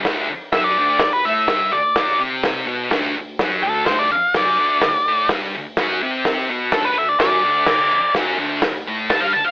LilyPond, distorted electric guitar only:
\new Staff \with { instrumentName = "Distorted electric guitar" } { \clef bass \time 4/4 \key d \mixolydian \tempo 4 = 126 <d, d>8 r8 <fis, fis>8 <d, d>8 d,8 <a, a>8 <g, g>8 d,8 | <fis, fis>8 <c c'>4 <b, b>8 <d, d>8 d,8 <fis, fis>8 <d, d>8 | <d, d>8 r8 <fis, fis>8 <d, d>8 d,8 <a, a>8 <g, g>8 d,8 | <fis, fis>8 <c c'>4 <b, b>8 <d, d>8 d,8 <fis, fis>8 <d, d>8 |
<d, d>8 r8 <fis, fis>8 <d, d>8 d,8 <a, a>8 <g, g>8 d,8 | }